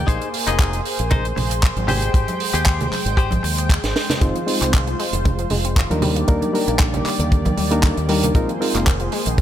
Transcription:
Already playing: A#3
0.07 A#1 D#4 G#4 C5, kick, closed hi-hat
0.21 closed hi-hat
0.34 open hi-hat
0.47 F1 D#4 G#4 D#5, clap, closed hi-hat
0.59 kick, clap, closed hi-hat
0.73 closed hi-hat
0.85 open hi-hat
0.99 A#1, closed hi-hat
1.11 D#4 G#4 C5, kick, closed hi-hat, low conga
1.25 closed hi-hat
1.36 A#1, muted clean electric guitar stroke, open hi-hat, low conga
1.50 muted clean electric guitar stroke, closed hi-hat
1.63 kick, clap, closed hi-hat
1.76 G#1, closed hi-hat, high conga
1.88 G#3 G4 G#4 C5 G5, open hi-hat, low conga
2.02 closed hi-hat
2.14 G#1, kick, closed hi-hat
2.28 closed hi-hat, high conga
2.40 open hi-hat
2.54 D#2 G4 G#4 C5, closed hi-hat
2.66 kick, clap, closed hi-hat
2.81 closed hi-hat, low conga
2.92 muted fingered electric bass stroke, clap, open hi-hat, high conga
3.06 G#1, closed hi-hat
3.17 G4 G#4 C5, kick, closed hi-hat
3.31 kick, closed hi-hat, high conga
3.43 D#2, muted clean electric guitar stroke, open hi-hat
3.57 muted clean electric guitar stroke, closed hi-hat
3.69 kick, clap, closed hi-hat
3.84 G#1, snare, closed hi-hat
3.96 snare, open hi-hat
4.10 snare, closed hi-hat, low conga
4.21 F1 D#3 G#3 C4 D#4 F4 C5, kick, closed hi-hat
4.35 F3, closed hi-hat
4.47 G#3 C4 D#4 F4 C5, open hi-hat
4.61 C2 C4, clap, closed hi-hat
4.74 D#3, kick, clap, closed hi-hat
4.87 F3, closed hi-hat
5.00 G#3, open hi-hat
5.13 F1 D#3, closed hi-hat
5.25 D#3, kick, closed hi-hat, low conga
5.39 F3, closed hi-hat
5.50 F1 G#3, open hi-hat, low conga
5.65 C4, closed hi-hat
5.76 D#3, kick, clap, closed hi-hat
5.90 D#2 F3 G3 A#3 D4 D#4 A#4, closed hi-hat, high conga
6.02 G3 A#3 G4 D5, open hi-hat, low conga
6.16 A#3, closed hi-hat
6.28 D#2 D3 G3 A#3 D4 D#4 A#4, kick, closed hi-hat
6.42 D#3, closed hi-hat, high conga
6.53 G3 A#3 D4 D#4 A#4, open hi-hat
6.68 A#1 A#3, closed hi-hat
6.79 D3, kick, clap, closed hi-hat
6.94 D#3, closed hi-hat, low conga
7.05 G3, muted fingered electric bass stroke, clap, open hi-hat
7.19 D#2 D3, closed hi-hat
7.32 D3, kick, closed hi-hat
7.45 D#3, kick, closed hi-hat, high conga
7.57 D#2 G3, open hi-hat
7.71 G3 A#3 D4 D#4 A#4, closed hi-hat
7.83 D3, kick, clap, closed hi-hat
7.97 D#2 D#3, closed hi-hat
8.08 G3 A#3 D4 D#4 A#4, open hi-hat
8.23 A#3, closed hi-hat, low conga
8.35 A#1 D#3 G#3 C4 D#4 F4 G#4 A#4 C5, kick, closed hi-hat
8.49 F3, closed hi-hat
8.60 G#3 C4 D#4 F4 A#4, open hi-hat
8.75 F1 A#3, clap, closed hi-hat
8.87 D#3, kick, clap, closed hi-hat
9.00 F3, closed hi-hat
9.12 G#3, open hi-hat
9.26 A#1 D#3, closed hi-hat
9.38 kick, closed hi-hat, low conga

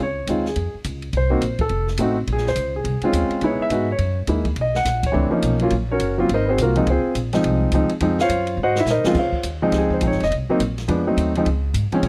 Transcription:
0.00 C#2 C#5
0.27 D#2 G#3 C4 D#4 F4, kick, hi-hat pedal, ride
0.45 G#4, snare
0.56 F2, kick, ride
0.74 muted upright bass stroke
0.84 C#2, kick, hi-hat pedal, ride
1.02 ride
1.13 C2, kick, ride
1.17 C5
1.30 A#3 C4 D#4 F#4
1.41 A#1, kick, hi-hat pedal, ride
1.59 A4, kick, ride
1.69 F1, kick, ride
1.87 snare
1.97 A1 A3 C4 D#4 F#4, kick, hi-hat pedal, ride
2.27 A#1, kick, ride
2.33 G#4
2.37 snare
2.47 C5, snare
2.55 C#2, kick, hi-hat pedal, ride
2.76 G#4
2.84 C2, kick, ride
3.01 G#3 C4 C#4 F4, muted upright bass stroke, ride
3.13 D#2, kick, hi-hat pedal, ride
3.30 muted upright bass stroke, ride
3.41 C#2 G#3 B3 D#4 E4, kick, ride
3.46 C#5
3.59 E5, muted upright bass stroke
3.70 G#2 G#3 B3 D#4 F#4, kick, hi-hat pedal, ride
3.92 C#5
3.98 F#2, kick, ride
4.27 D#2 G#3 A#3 D#4 E4, kick, hi-hat pedal, ride
4.45 kick, ride
4.56 B1, kick, ride
4.61 D#5
4.74 F#5, snare
4.85 A#1, kick, snare, hi-hat pedal, ride
5.03 C#5, kick, ride
5.12 C#2 E3 A3 C4 D4
5.31 F3 A#3 C#4 D#4, muted upright bass stroke
5.42 B1, kick, hi-hat pedal, ride
5.59 F#3 A#3 C#4 F4, ride
5.70 A#1, kick, ride
5.92 C#4 F#4 A#4 C#5
6.00 F#1, kick, hi-hat pedal, ride
6.18 F#3 A#3 C4 F4
6.29 G#1, kick, ride
6.34 D#4 A#4 C5 D#5
6.49 C4 F#4 G#4 C5
6.58 C2 A#3, kick, hi-hat pedal, ride
6.62 F4 F#4 A#4
6.76 F3 G#3 C4 D#4, ride
6.87 C#2 C5, kick, ride
6.91 C4 F4 G#4
7.04 muted upright bass stroke
7.15 A#1, kick, hi-hat pedal, ride
7.33 F3 G#3 C4 D#4, snare, ride
7.43 C2, kick, ride
7.72 C#2 F3 G#3 C4 D#4, kick, hi-hat pedal, ride
7.89 muted upright bass stroke, ride
8.00 F2 F3 G#3 C4 D#4, kick, ride
8.19 C5 C#5 F5, snare
8.23 F4
8.29 F#2, kick, hi-hat pedal, ride
8.47 ride
8.57 G#2
8.63 F#4 C5 D#5 F#5
8.75 snare
8.80 E4 E5
8.86 A#2, snare, hi-hat pedal
8.91 D#4 A#4 C5 D#5
9.04 C#2 F3 G#3 C4 F4, muted upright bass stroke, snare
9.15 C#2, kick, crash
9.19 F4 C5 C#5 F5
9.32 muted upright bass stroke, kick
9.43 D#2, kick, hi-hat pedal, ride
9.62 F3 G#3 C4 D#4
9.72 C#2 G4, kick, snare, ride
9.78 G#4
9.90 C5, kick
10.01 A#1 F3 G#3 C4 D#4, kick, hi-hat pedal, ride
10.07 C#5
10.11 G#1, snare
10.20 F1 D#5, snare, ride
10.30 C2, kick, ride
10.48 F#3 A#3 C4 D#4, muted upright bass stroke
10.59 A#1, kick, hi-hat pedal, ride
10.78 snare, ride
10.88 F2 F3 G#3 B3 D4, kick, ride
11.07 F#3 A3 C4 D#4
11.17 D#2, kick, hi-hat pedal, ride
11.35 F3 G#3 C4 D#4, ride
11.45 C#2, kick, ride
11.74 G#2, kick, hi-hat pedal, ride
11.91 F3 G#3 C4 C#4, muted upright bass stroke, ride
12.02 A#2, kick, ride

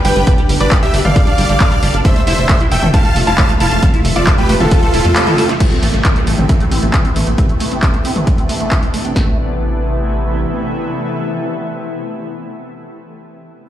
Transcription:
Already playing: B2 D3 G3 D4 G4
0.05 G1 G3 B4 G5, open hi-hat
0.16 G1 G3, closed hi-hat
0.27 D4 A4, kick, closed hi-hat
0.38 G3, closed hi-hat
0.49 G1 G3, open hi-hat
0.60 G1 D4 B4 D5, closed hi-hat
0.71 G3, kick, clap, closed hi-hat
0.83 G3 G4 E5, closed hi-hat
0.94 G1 D4, open hi-hat
1.05 G1 G3 D5 F5, closed hi-hat, mid tom
1.16 G3, kick, closed hi-hat
1.27 D4, closed hi-hat
1.38 G1 G3, open hi-hat
1.49 G1 G3, closed hi-hat
1.60 D4, kick, clap, closed hi-hat
1.72 G3, closed hi-hat
1.83 G1 G3, open hi-hat
1.94 G1 D4, closed hi-hat
2.05 C3 F3 A3 F4 C5 E5, kick, closed hi-hat
2.16 A3, closed hi-hat
2.27 F1 E4 C5 E5, open hi-hat
2.38 F1 A3, closed hi-hat
2.49 A3, kick, clap, closed hi-hat
2.60 E4, closed hi-hat
2.72 F1 A3 E5 G5, open hi-hat
2.83 F1 A3, closed hi-hat, mid tom
2.94 E4 F5 A5, kick, closed hi-hat
3.05 A3, closed hi-hat
3.16 F1 A3, open hi-hat
3.27 F1 E4 F5 A5, closed hi-hat
3.38 A3, kick, clap, closed hi-hat
3.49 A3, closed hi-hat
3.60 F1 E4 F5 A5, open hi-hat
3.71 F1 A3, closed hi-hat
3.83 A3 G4, kick, closed hi-hat, mid tom
3.94 E4, closed hi-hat
4.05 F1 A3, open hi-hat
4.16 F1 A3 F4 D5, closed hi-hat
4.27 E4, kick, clap, closed hi-hat
4.38 A3 G4 B4, closed hi-hat
4.49 F1 A3, open hi-hat
4.60 F1 E4 F4 A4, closed hi-hat, mid tom
4.71 A3, kick, closed hi-hat
4.83 A3, closed hi-hat
4.94 F1 E4, open hi-hat
5.05 F2 A3, closed hi-hat
5.16 A3, clap, closed hi-hat
5.27 E4, closed hi-hat, mid tom
5.38 A3, snare, open hi-hat
5.49 A3, snare, closed hi-hat
5.60 C3 E3 A3 B3 E4, kick, closed hi-hat, crash, downlifter
5.72 C4, closed hi-hat
5.83 A1 A3, open hi-hat
5.94 A1 A3, closed hi-hat
6.05 C4, kick, clap, closed hi-hat
6.16 A3, closed hi-hat
6.27 A1 A3, open hi-hat
6.38 A1 C4, closed hi-hat, mid tom
6.49 A3, kick, closed hi-hat
6.60 A3, closed hi-hat
6.71 A1 C4, open hi-hat
6.83 A1 A3, closed hi-hat
6.94 A3, kick, clap, closed hi-hat
7.05 C4, closed hi-hat
7.16 A1 A3, open hi-hat
7.27 A1 A3, closed hi-hat
7.38 C4 D4, kick, closed hi-hat
7.49 A3, closed hi-hat
7.60 A3, open hi-hat
7.71 C4, closed hi-hat
7.83 A3, kick, clap, closed hi-hat
7.94 A3, closed hi-hat
8.05 C4, open hi-hat
8.16 A3, closed hi-hat, mid tom
8.27 A3, kick, closed hi-hat
8.38 C4, closed hi-hat
8.49 A3, open hi-hat
8.60 A3, closed hi-hat
8.71 C4, kick, clap, closed hi-hat
8.83 A3, closed hi-hat
8.94 A3, open hi-hat
9.05 C4, closed hi-hat
9.16 A1 C3 E3 A3 B3 E4, kick, snare

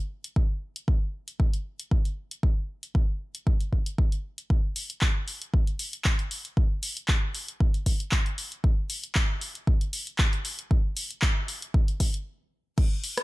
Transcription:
0.24 closed hi-hat
0.36 kick
0.76 closed hi-hat
0.88 kick
1.28 closed hi-hat
1.40 kick
1.54 closed hi-hat
1.79 closed hi-hat
1.91 kick
2.05 closed hi-hat
2.31 closed hi-hat
2.43 kick
2.83 closed hi-hat
2.95 kick
3.35 closed hi-hat
3.47 kick
3.61 closed hi-hat
3.73 kick
3.86 closed hi-hat
3.98 kick
4.12 closed hi-hat
4.38 closed hi-hat
4.50 kick
4.76 open hi-hat
4.90 closed hi-hat
5.01 kick, clap
5.28 open hi-hat
5.42 closed hi-hat
5.54 kick
5.67 closed hi-hat
5.79 open hi-hat
5.93 closed hi-hat
6.05 kick, clap
6.19 closed hi-hat
6.31 open hi-hat
6.45 closed hi-hat
6.57 kick
6.83 open hi-hat
6.97 closed hi-hat
7.08 kick, clap
7.35 open hi-hat
7.48 closed hi-hat
7.60 kick
7.74 closed hi-hat
7.86 kick, open hi-hat
8.00 closed hi-hat
8.12 kick, clap
8.26 closed hi-hat
8.38 open hi-hat
8.52 closed hi-hat
8.64 kick
8.90 open hi-hat
9.04 closed hi-hat
9.15 kick, clap
9.41 open hi-hat
9.55 closed hi-hat
9.67 kick
9.81 closed hi-hat
9.93 open hi-hat
10.07 closed hi-hat
10.18 kick, clap
10.33 closed hi-hat
10.45 open hi-hat
10.59 closed hi-hat
10.71 kick
10.97 open hi-hat
11.11 closed hi-hat
11.22 kick, clap
11.48 open hi-hat
11.62 closed hi-hat
11.74 kick
11.88 closed hi-hat
12.00 kick, open hi-hat
12.14 closed hi-hat
12.78 kick, crash
13.04 open hi-hat
13.18 cross-stick, closed hi-hat

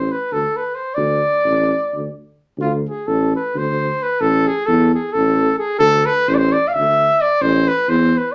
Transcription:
Already playing: A1 C5
0.11 B4
0.32 D2 A4
0.56 B4
0.75 C5
0.95 D2 D5
1.44 A1
1.94 D2
2.58 D2 F4
2.89 G#4
3.07 A1 A4
3.36 B4
3.55 D2 C5
4.03 B4
4.20 A1 A4
4.47 G#4
4.66 E2 A4
4.95 G#4
5.12 A1 A4
5.59 G#4
5.79 D2 A4
6.06 B4
6.28 A1 C5
6.34 C5 D5
6.52 D5
6.68 F5
6.73 D2 E5
7.21 D5
7.41 A1 C5
7.68 B4
7.88 E2 C5
8.17 B4

